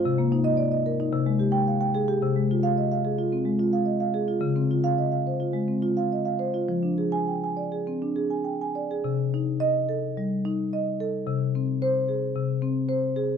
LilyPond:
\new Staff \with { instrumentName = "Marimba" } { \time 4/4 \key c \minor \tempo 4 = 109 << { r8. ees''8 r4. g''8 r8. | r8. f''8 r2 r8. | r8. f''8 r2 r8. | r8. aes''8 r2 r8. |
r4 ees''8. r2 r16 | r4 c''8. r2 r16 | } \\ { c16 bes16 ees'8 d''16 ees''16 bes'16 ees'16 c16 aes16 g'8 f''16 g''16 aes'16 g'16 | c16 aes16 f'8 ees''16 f''16 aes'16 f'16 c'16 aes16 f'16 f''16 ees''16 f''16 aes'16 f'16 | des16 c'16 f'8 ees''16 f''16 c''16 f'16 aes16 c'16 f'16 f''16 ees''16 f''16 c''16 f'16 | f16 d'16 aes'8 g''16 aes''16 d''16 aes'16 c'16 d'16 aes'16 aes''16 g''16 aes''16 d''16 aes'16 |
c8 ees'8. r16 a'8 g8 ees'8 ees''8 a'8 | c8 c'8. r16 aes'8 c8 c'8 c''8 aes'8 | } >> }